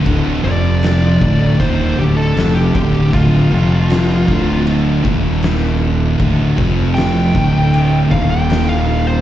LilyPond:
<<
  \new Staff \with { instrumentName = "Lead electric guitar" } { \time 4/4 \key d \phrygian \tempo 4 = 78 r8 d''4. c''8 g'16 a'8 g'8. | f'2 r2 | r4 g''4. f''16 g''8 f''8 c''16 | }
  \new Staff \with { instrumentName = "Distorted electric guitar" } { \clef bass \time 4/4 \key d \phrygian <d, a, d>8 <f, c f>4 <d, a, d>8 <ees, bes, ees>8 <d, a, d>8 <f, c f>8 <d, a, d>8 | <d, a, d>8 <f, c f>4 <d, a, d>4 <ees, bes, ees>4. | <d, a, d>8 <f, c f>4 <d, a, d>4 <ees, bes, ees>4. | }
  \new Staff \with { instrumentName = "Distorted electric guitar" } { \clef bass \time 4/4 \key d \phrygian <d, a, d>8 <f, c f>4 <d, a, d>8 <ees, bes, ees>8 <d, a, d>8 <f, c f>8 <d, a, d>8 | <d, a, d>8 <f, c f>4 <d, a, d>4 <ees, bes, ees>4. | <d, a, d>8 <f, c f>4 <d, a, d>4 <ees, bes, ees>4. | }
  \new Staff \with { instrumentName = "Fingered electric bass" } { \clef bass \time 4/4 \key d \phrygian d,,8 f,,4 d,,8 ees,,8 d,,8 f,,8 d,,8 | d,,8 f,,4 d,,4 ees,,4. | d,,8 f,,4 d,,4 ees,,4. | }
  \new DrumStaff \with { instrumentName = "Drums" } \drummode { \time 4/4 <cymc bd>4 <cymc sn>8 bd8 <cymc bd>4 <cymc sn>8 bd8 | <cymc bd>4 <cymc sn>8 bd8 cymc8 bd8 <cymc sn>4 | <cymc bd>8 bd8 <cymc sn>8 bd8 cymc8 bd8 <cymc sn>4 | }
>>